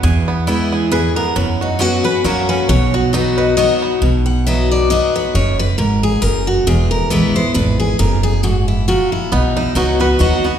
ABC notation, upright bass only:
X:1
M:3/4
L:1/8
Q:"Swing" 1/4=136
K:B
V:1 name="Upright bass" clef=bass
E,,6 | F,,4 F,,2 | B,,,6 | B,,,6 |
F,,,2 G,,,2 F,,,2 | E,,,2 A,,,2 G,,,2 | F,,,6 | B,,,2 C,,2 D,,2 |]